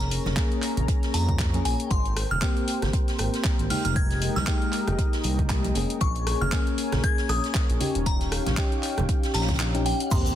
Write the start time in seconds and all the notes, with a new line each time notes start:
Already playing: F1 A#3 C#4 G#4 A#4 C#5 A#5
0.00 snare, closed hi-hat
0.11 closed hi-hat, open hi-hat
0.26 F1, snare, high conga, low conga
0.36 A#3 C#4 G#4, kick, snare, clap, closed hi-hat
0.52 closed hi-hat
0.62 clap, closed hi-hat, open hi-hat
0.77 A#1, closed hi-hat, low conga
0.88 kick, closed hi-hat
1.03 snare, closed hi-hat
1.14 F2 A#5, closed hi-hat, open hi-hat
1.29 kick, closed hi-hat, low conga
1.39 kick, snare, clap, closed hi-hat
1.54 A#3 C#4 G#4, closed hi-hat, high conga
1.65 A#1 G#5, closed hi-hat, open hi-hat
1.80 closed hi-hat
1.90 G#1 A#4 C5 G5 C6, kick, closed hi-hat
2.05 closed hi-hat
2.17 cross-stick, closed hi-hat, open hi-hat
2.31 D#1 F6, low conga
2.41 A#3 C4 G4, kick, snare, clap, closed hi-hat
2.57 closed hi-hat
2.68 closed hi-hat, open hi-hat
2.82 G#1, cross-stick, snare, closed hi-hat, low conga
2.93 kick, closed hi-hat
3.08 snare, closed hi-hat
3.18 G#1, cross-stick, closed hi-hat, open hi-hat
3.34 snare, closed hi-hat
3.44 kick, snare, clap, closed hi-hat
3.59 G#1, closed hi-hat
3.70 G#3 A#3 D#4 G4 F6, snare, open hi-hat, low conga
3.85 F1 F6, closed hi-hat
3.96 G#3 D#5 G#6, kick, closed hi-hat
4.11 snare, closed hi-hat
4.22 closed hi-hat, open hi-hat
4.36 C2 F6, snare, high conga, low conga
4.47 G#3 A#3 D#4 G4, kick, snare, clap, closed hi-hat
4.62 closed hi-hat
4.72 clap, closed hi-hat, open hi-hat
4.87 F1, cross-stick, closed hi-hat, low conga
4.99 kick, closed hi-hat
5.13 snare, closed hi-hat
5.23 C2, closed hi-hat, open hi-hat
5.39 kick, closed hi-hat, low conga
5.49 kick, snare, clap, closed hi-hat
5.64 closed hi-hat, high conga
5.75 F1 A#3 C#4 G#4, closed hi-hat, open hi-hat
5.90 closed hi-hat
6.01 A#1 A#4 C#5 G#5 C#6, kick, closed hi-hat
6.15 closed hi-hat
6.27 cross-stick, closed hi-hat, open hi-hat
6.41 F1 F6, low conga
6.52 A#3 C#4 G#4, kick, snare, clap, closed hi-hat
6.67 closed hi-hat
6.78 closed hi-hat, open hi-hat
6.92 A#1, cross-stick, snare, closed hi-hat, low conga
7.04 G#6, kick, closed hi-hat
7.18 snare, closed hi-hat
7.29 A#1 D#6, cross-stick, closed hi-hat, open hi-hat
7.44 snare, closed hi-hat
7.54 kick, snare, clap, closed hi-hat
7.70 A#1, closed hi-hat
7.80 C#4 D#4 G4, open hi-hat, low conga
7.95 D#1, closed hi-hat
8.06 F5 G5 A#5, kick, closed hi-hat
8.21 snare, closed hi-hat
8.32 cross-stick, closed hi-hat, open hi-hat
8.46 A#1, snare, closed hi-hat, high conga, low conga
8.57 C#4 D#4 G4, kick, snare, clap, closed hi-hat
8.72 closed hi-hat
8.83 clap, closed hi-hat, open hi-hat
8.97 D#1, cross-stick, closed hi-hat, high conga, low conga
9.09 kick, closed hi-hat
9.23 snare, closed hi-hat
9.34 A#1 A#5, snare, closed hi-hat, open hi-hat
9.41 snare, closed hi-hat
9.48 kick, snare, closed hi-hat, low conga
9.54 snare, closed hi-hat
9.60 snare, clap, closed hi-hat
9.74 C#4 D#4 G4, closed hi-hat, high conga
9.86 G5, open hi-hat
10.00 closed hi-hat
10.11 G#1 A#3 C4 G4 A#4 C5 G5 C6, kick, closed hi-hat, crash, sub drop, shaker
10.26 closed hi-hat, shaker